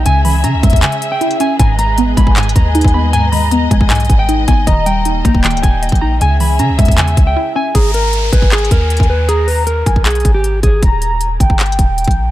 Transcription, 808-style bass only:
\new Staff \with { instrumentName = "808-style bass" } { \clef bass \time 4/4 \key gis \minor \tempo 4 = 156 cis,4 cis16 cis,16 e,16 e,16 r2 | gis,,4. gis,,4 dis,8. dis,8.~ | dis,4. b,,4 gis,,4 gis,,8 | dis,,4. g,,16 dis,,8 cis,,16 dis,,8. ais,,8. |
cis,4 cis16 cis,16 e,16 e,8. cis,8 r4 | gis,,4. gis,,4 dis,8. dis,8.~ | dis,4. b,,4 gis,,4 gis,,8 | dis,,4. g,,4 dis,,8. ais,,8. | }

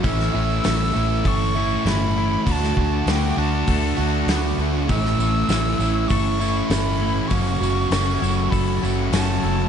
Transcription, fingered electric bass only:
\new Staff \with { instrumentName = "Fingered electric bass" } { \clef bass \time 4/4 \key a \mixolydian \tempo 4 = 99 a,,8 a,,8 a,,8 a,,8 g,,4 g,,4 | d,8 d,8 d,8 d,8 d,8 d,8 d,8 d,8 | a,,8 a,,8 a,,8 a,,8 g,,4 g,,4 | fis,,8 fis,,8 fis,,8 fis,,8 fis,,8 fis,,8 fis,,8 fis,,8 | }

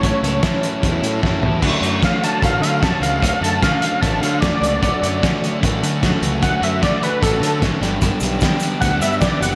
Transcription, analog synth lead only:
\new Staff \with { instrumentName = "Analog synth lead" } { \time 4/4 \key d \major \tempo 4 = 150 cis''2. r4 | r4 f''8 a''8 f''8 f''8 a''8 f''8 | f''8 a''8 f''8 f''8 a''8 f''8 d''4~ | d''2 r2 |
fis''8 e''8 d''8 b'8 a'8 a'8 r4 | r2 fis''8 e''8 d''8 fis''8 | }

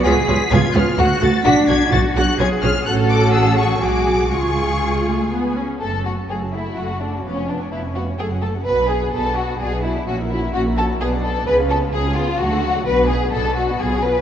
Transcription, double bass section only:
\new Staff \with { instrumentName = "Double bass section" } { \clef bass \time 3/4 \key fis \minor \tempo 4 = 128 cis,8 cis,8 cis,8 cis,8 d,8 d,8 | b,,8 b,,8 b,,8 b,,8 b,,8 b,,8 | a,,2 b,,4 | cis,2~ cis,8 r8 |
fis,,4 fis,,4 fis,,4 | eis,,4 eis,,4 fis,,4 | b,,4 b,,4 b,,4 | ais,,4 ais,,4 b,,4 |
cis,4 cis,4 d,4 | b,,4 b,,4 b,,4 | }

